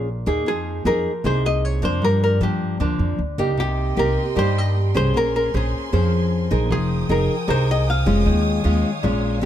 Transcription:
0.00 0.23 A#1 medium
0.00 0.45 A#2 soft
0.26 0.46 D#2 medium
0.26 0.82 A#3 medium
0.26 0.82 D#4 medium
0.26 0.82 G#4 medium
0.46 0.83 F2 medium
0.46 1.22 F3 medium
0.46 0.86 G#4 medium
0.85 1.03 F2 medium
0.85 1.11 A#3 medium
0.85 1.11 D#4 medium
0.85 1.11 G#4 medium
0.85 1.26 A#4 medium
1.24 1.79 C2 medium
1.24 2.00 C3 medium
1.24 1.80 A#3 medium
1.24 1.80 D#4 medium
1.24 1.80 G#4 medium
1.24 1.46 C5 medium
1.46 1.65 D#5 medium
1.65 1.84 C#5 medium
1.82 2.03 F2 medium
1.82 2.38 F3 medium
1.82 2.38 A#3 medium
1.82 2.38 D4 medium
1.82 2.04 C5 medium
2.02 2.78 G2 medium
2.02 2.39 G2 medium
2.02 2.22 A#4 medium
2.24 2.43 A#4 medium
2.41 2.59 G2 medium
2.41 2.77 F3 medium
2.41 2.77 A#3 medium
2.41 2.77 D4 medium
2.41 2.79 G4 medium
2.80 2.98 D2 medium
2.80 3.56 D3 soft
2.80 3.19 F3 medium
2.80 3.19 A#3 medium
2.80 3.19 D4 medium
2.99 3.17 F2 medium
3.19 3.36 D2 medium
3.38 3.58 C#2 medium
3.38 3.94 A#3 medium
3.38 3.94 D#4 medium
3.38 3.94 G4 medium
3.58 3.95 C2 medium
3.58 4.34 C3 medium
3.58 3.99 G4 medium
3.58 6.67 A#4 medium
3.58 5.12 D#5 medium
3.58 5.12 G5 medium
3.58 5.12 C6 medium
3.97 4.15 C2 medium
3.97 4.22 A#3 medium
3.97 4.22 D#4 medium
3.97 4.22 G4 medium
3.97 4.38 A#4 medium
4.35 5.12 G2 medium
4.35 4.91 G2 medium
4.35 4.75 A#3 medium
4.35 4.75 D#4 medium
4.35 4.75 G4 medium
4.35 4.58 C5 medium
4.58 4.96 D#5 loud
4.95 5.15 C2 medium
4.95 5.50 C#4 medium
4.95 5.50 G#4 medium
4.95 5.50 C5 medium
4.95 5.16 C5 medium
5.14 5.51 A#1 medium
5.14 5.90 A#3 medium
5.14 5.34 A#4 loud
5.14 6.69 G#5 medium
5.14 6.69 C6 medium
5.36 5.53 A#4 medium
5.54 5.72 A#1 medium
5.54 5.89 C#4 soft
5.54 5.90 G#4 soft
5.54 5.91 G#4 medium
5.54 5.90 C5 medium
5.92 6.47 F2 medium
5.92 6.68 F3 medium
5.92 6.48 C#4 medium
5.92 6.48 G#4 medium
5.92 6.48 C5 medium
6.51 6.72 A#1 medium
6.51 7.06 D#4 medium
6.51 7.06 G#4 medium
6.51 7.06 A#4 medium
6.70 7.07 F1 medium
6.70 7.46 F3 medium
6.70 7.11 G#4 medium
6.70 8.24 A#4 medium
6.70 8.24 G5 medium
6.70 9.40 G#5 medium
6.70 9.40 D#6 medium
7.09 7.27 F1 medium
7.09 7.34 D#4 medium
7.09 7.34 G#4 medium
7.09 7.35 A#4 medium
7.09 7.50 A#4 medium
7.47 8.02 C2 medium
7.47 8.24 C3 medium
7.47 7.86 D#4 medium
7.47 7.87 G#4 soft
7.47 7.87 A#4 medium
7.47 7.69 C5 medium
7.71 7.89 D#5 medium
7.90 9.40 F5 medium
8.06 8.28 F1 medium
8.06 8.61 G#3 medium
8.06 8.62 C#4 medium
8.06 8.62 F4 medium
8.25 8.62 D#2 medium
8.25 9.02 D#3 medium
8.25 9.41 C#5 medium
8.25 9.41 F5 medium
8.64 8.83 D#2 medium
8.64 8.89 G#3 medium
8.64 8.90 C#4 soft
8.64 8.90 F4 medium
9.03 9.40 A#1 medium
9.03 9.40 A#2 medium
9.03 9.41 G#3 medium
9.03 9.41 C#4 medium
9.03 9.41 F4 medium
9.41 9.45 A#3 medium
9.41 9.45 C#4 soft

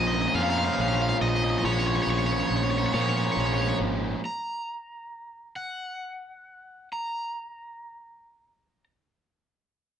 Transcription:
0.00 0.26 A#1 loud
0.00 0.36 A#2 medium
0.00 0.35 F3 loud
0.00 0.34 A#3 loud
0.00 0.33 C#4 loud
0.07 0.14 D#5 loud
0.14 0.21 D#5 medium
0.22 0.28 D#5 medium
0.28 0.35 D#5 medium
0.34 0.69 F2 loud
0.34 1.62 A#2 medium
0.34 1.63 F3 medium
0.34 1.64 A#3 loud
0.34 1.65 C#4 loud
0.34 0.42 F5 loud
0.43 0.49 F5 medium
0.50 0.57 F5 medium
0.58 0.64 F5 medium
0.65 0.72 F5 medium
0.73 0.81 F5 medium
0.78 1.12 A#1 loud
0.78 0.88 F5 medium
0.89 0.95 F5 medium
0.95 1.02 F5 medium
1.02 1.09 F5 medium
1.09 1.16 F5 medium
1.21 1.55 A#1 medium
1.21 1.28 D#5 medium
1.28 1.36 D#5 medium
1.36 1.43 D#5 medium
1.44 1.50 D#5 medium
1.50 1.58 D#5 medium
1.58 1.65 D#5 medium
1.63 1.98 A#1 loud
1.63 2.90 A#2 medium
1.63 2.91 F3 loud
1.63 2.91 A#3 loud
1.63 2.91 C#4 loud
1.63 1.72 C#5 medium
1.73 1.79 C#5 medium
1.79 1.86 C#5 medium
1.87 1.95 C#5 medium
1.96 2.02 C#5 medium
2.03 2.10 C#5 medium
2.07 2.41 A#1 medium
2.07 2.18 C#5 medium
2.18 2.26 C#5 medium
2.26 2.32 C#5 medium
2.33 2.40 C#5 medium
2.40 2.47 C#5 medium
2.48 2.85 A#1 medium
2.48 2.55 C#5 medium
2.57 2.63 C#5 medium
2.64 2.70 C#5 medium
2.71 2.78 C#5 medium
2.78 2.86 C#5 medium
2.86 2.94 C#5 medium
2.92 3.28 A#2 medium
2.92 4.21 A#2 medium
2.92 4.21 F3 medium
2.92 4.21 A#3 medium
2.92 4.20 C#4 medium
2.92 3.01 C#5 medium
3.01 3.09 C#5 medium
3.09 3.17 C#5 medium
3.17 3.24 C#5 medium
3.25 3.32 C#5 medium
3.32 3.39 C#5 medium
3.37 3.71 A#1 loud
3.37 3.46 C#5 medium
3.46 3.54 C#5 medium
3.54 3.61 C#5 medium
3.62 3.68 C#5 medium
3.69 3.76 C#5 medium
3.80 4.14 G#1 medium
4.25 5.56 A#5 medium
5.56 6.88 F#5 medium
6.93 8.84 A#5 medium

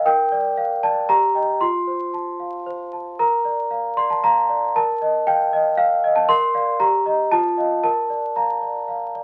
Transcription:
0.06 1.06 A#4 medium
0.06 0.83 G5 loud
0.32 0.73 D5 medium
0.58 0.99 F5 soft
0.83 1.09 D5 soft
0.83 1.09 A5 medium
1.09 1.60 G4 medium
1.09 1.61 A#5 medium
1.35 1.59 D#5 soft
1.35 1.59 G5 soft
1.61 3.15 F4 soft
1.61 2.66 C6 medium
1.87 2.30 C5 soft
2.14 2.56 A5 soft
2.40 2.82 F5 soft
2.66 3.08 C5 soft
2.93 3.19 A5 soft
3.19 4.71 A#4 medium
3.19 3.97 A#5 medium
3.45 3.87 D5 soft
3.71 4.12 F5 soft
3.97 4.39 D5 soft
3.97 4.10 C6 medium
4.10 4.23 A5 medium
4.24 4.65 F5 soft
4.24 4.76 A#5 medium
4.49 4.75 D5 soft
4.75 6.25 A#4 medium
4.75 5.27 A5 medium
5.02 5.43 D#5 soft
5.27 5.68 F5 soft
5.27 5.78 G5 medium
5.53 5.94 D#5 soft
5.78 6.16 F5 medium
6.04 6.29 D#5 medium
6.16 6.29 A5 medium
6.29 6.78 A#4 medium
6.29 6.80 C6 loud
6.54 6.77 D5 soft
6.54 6.77 F5 medium
6.80 7.30 G4 medium
6.80 7.05 A#5 medium
7.06 7.29 D#5 soft
7.06 7.29 A#5 soft
7.32 7.82 F4 medium
7.32 7.82 A5 loud
7.58 7.81 D#5 soft
7.58 7.81 F5 soft
7.83 9.24 A#4 soft
7.83 8.36 A5 medium
8.10 8.52 D5 soft
8.36 8.78 F5 soft
8.36 8.88 A#5 medium
8.62 9.04 D5 soft
8.88 9.24 F5 soft
9.15 9.24 D5 soft

